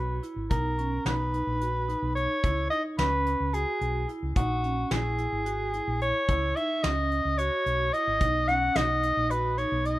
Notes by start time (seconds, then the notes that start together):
Already playing: B1 F#4 B4
0.23 E4, closed hi-hat
0.36 G#1
0.50 B1 D#4 A#4, kick, closed hi-hat
0.78 C#4, closed hi-hat
1.05 B1 D#4 B4, snare, closed hi-hat
1.33 D#4, closed hi-hat
1.47 A#1
1.61 F#4, closed hi-hat
1.88 D#4, closed hi-hat
2.02 B1
2.15 C#5, closed hi-hat
2.43 C#2 E4, kick, closed hi-hat
2.70 D#4 D#5, closed hi-hat
2.98 C#2 C#4 B4, snare, closed hi-hat
3.26 closed hi-hat
3.40 C#2
3.53 F#4 G#4, closed hi-hat
3.81 B1, closed hi-hat
4.08 E4, closed hi-hat
4.23 C#2
4.36 A#1 D#4 F#4, kick, closed hi-hat
4.63 C#4, closed hi-hat
4.91 A#1 E4 G#4, snare, closed hi-hat
5.18 E4, closed hi-hat
5.32 G#1
5.46 F#4, closed hi-hat
5.73 E4, closed hi-hat
5.88 A#1
6.01 C#5, closed hi-hat
6.28 C#2 E4, kick, closed hi-hat
6.56 D#4 E5, closed hi-hat
6.83 C#2 C#4 D#5, snare, closed hi-hat
7.11 closed hi-hat
7.25 C#2
7.38 F#4 C#5, closed hi-hat
7.66 B1, closed hi-hat
7.93 E4 D#5, closed hi-hat
8.07 G#1
8.21 B1 D#4, kick, closed hi-hat
8.48 C#4 F#5, snare, closed hi-hat
8.76 B1 D#4 D#5, snare, closed hi-hat
9.03 D#4, closed hi-hat
9.17 A#1
9.30 F#4 B4, closed hi-hat
9.58 D#4 C#5, closed hi-hat
9.72 B1
9.85 D#5, closed hi-hat